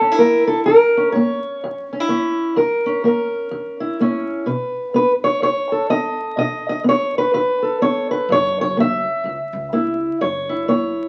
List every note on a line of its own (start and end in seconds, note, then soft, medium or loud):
0.00 0.15 F#2 medium
0.00 0.67 C#4 soft
0.00 0.18 A4 medium
0.12 0.68 E4 soft
0.19 0.63 A#3 medium
0.19 0.47 A#4 medium
0.47 0.59 A4 medium
0.66 1.11 F#2 medium
0.66 1.12 A#4 medium
0.97 1.91 C#4 soft
1.12 1.59 A#3 medium
1.12 2.56 C#5 medium
1.64 2.07 F#2 medium
1.93 2.00 C#4 soft
2.00 2.57 E4 soft
2.09 2.53 A#3 medium
2.09 2.55 C#4 soft
2.56 3.00 F#2 medium
2.56 3.04 A#4 medium
2.86 3.99 C#4 medium
3.04 3.48 A#3 medium
3.04 4.45 A#4 medium
3.51 3.95 F#2 medium
3.80 4.44 E4 medium
4.00 4.44 A#3 medium
4.00 4.46 C#4 medium
4.46 4.90 B2 medium
4.46 4.95 B4 soft
4.94 5.38 B3 medium
4.94 5.12 B4 medium
5.24 5.42 C#5 medium
5.42 5.86 F#2 medium
5.42 5.90 C#5 medium
5.72 6.36 A4 soft
5.90 6.34 B3 medium
5.90 6.37 D#5 medium
6.37 6.81 B2 medium
6.37 6.67 D#5 medium
6.69 6.80 D#5 medium
6.84 7.29 B3 medium
6.89 7.16 C#5 medium
7.18 7.33 B4 medium
7.34 7.77 F#2 medium
7.34 7.81 B4 medium
7.62 8.26 A4 soft
7.82 8.25 B3 medium
7.82 8.10 C#5 medium
8.11 8.29 B4 medium
8.29 9.03 F#1 loud
8.29 8.73 F#2 medium
8.29 8.59 C#5 loud
8.61 8.78 C#5 medium
8.77 9.21 A#3 medium
8.77 10.21 E5 loud
9.24 9.35 C#2 medium
9.24 9.69 F#2 medium
9.53 10.05 C#2 medium
9.73 10.17 A#3 medium
9.73 10.18 E4 soft
10.21 10.95 F#1 medium
10.21 10.65 F#2 medium
10.21 10.68 C#5 medium
10.49 11.08 E4 soft
10.68 11.08 A#3 medium
10.68 11.08 C#5 medium